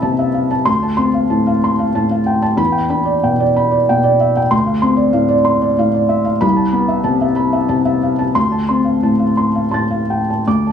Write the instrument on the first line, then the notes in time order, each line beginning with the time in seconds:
felt piano
Already playing: C2 C3 B3 E5 A5 B5
0.02 C3 A5
0.19 E5
0.34 F5
0.51 A5
0.65 D2 C6
0.83 A5
0.97 C4 C6
1.14 F5
1.30 A2 A5
1.47 F5
1.64 C6
1.79 F5
1.94 A2 A5
2.11 F5
2.26 G5
2.42 A5
2.57 E2 B5
2.72 G5
2.90 D4 B5
3.05 D5
3.23 B2 G5
3.40 D5
3.56 B5
3.71 D5
3.89 B2 G5
4.04 D5
4.20 E5
4.37 G5
4.51 D2 C6
4.66 F5
4.82 C4 C6
4.96 D5
5.13 A2 F5
5.29 D5
5.45 C6
5.62 D5
5.78 A2 F5
5.94 D5
6.09 E5
6.25 F5
6.41 C2 B5
6.56 A5
6.73 B3 B5
6.88 E5
7.04 C3 A5
7.21 E5
7.36 B5
7.53 E5
7.69 C3 A5
7.85 E5
8.03 F5
8.19 A5
8.35 D2 C6
8.52 A5
8.69 C4 C6
8.85 F5
9.03 A2 A5
9.19 F5
9.37 C6
9.55 F5
9.71 A2 A5 C6 A6
9.90 F5
10.10 G5
10.30 A5
10.47 D2 D6
10.67 A5